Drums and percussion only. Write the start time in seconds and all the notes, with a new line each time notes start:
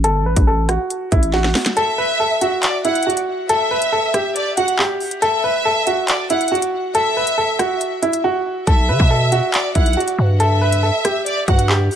0.04 closed hi-hat
0.36 kick, closed hi-hat
0.69 cross-stick, closed hi-hat
0.90 closed hi-hat
1.12 kick, closed hi-hat
1.23 closed hi-hat
1.34 snare
1.44 snare
1.55 snare, open hi-hat
1.66 snare, closed hi-hat
1.77 closed hi-hat
2.41 closed hi-hat
2.63 clap, closed hi-hat
2.85 closed hi-hat
2.95 closed hi-hat
3.03 closed hi-hat
3.10 closed hi-hat
3.17 closed hi-hat
3.49 closed hi-hat
3.82 closed hi-hat
4.14 cross-stick, closed hi-hat
4.36 closed hi-hat
4.57 closed hi-hat
4.68 closed hi-hat
4.79 clap
5.00 open hi-hat
5.11 closed hi-hat
5.22 closed hi-hat
5.87 closed hi-hat
6.08 clap, closed hi-hat
6.30 closed hi-hat
6.41 closed hi-hat
6.48 closed hi-hat
6.55 closed hi-hat
6.62 closed hi-hat
6.95 closed hi-hat
7.27 closed hi-hat
7.59 cross-stick, closed hi-hat
7.81 closed hi-hat
8.03 closed hi-hat
8.13 closed hi-hat
8.67 kick, closed hi-hat
9.00 kick
9.32 closed hi-hat
9.54 clap, closed hi-hat
9.75 kick, closed hi-hat
9.86 closed hi-hat
9.93 closed hi-hat
10.00 closed hi-hat
10.08 closed hi-hat
10.40 closed hi-hat
10.72 closed hi-hat
11.05 cross-stick, closed hi-hat
11.26 closed hi-hat
11.48 kick, closed hi-hat
11.59 closed hi-hat
11.70 clap
11.91 open hi-hat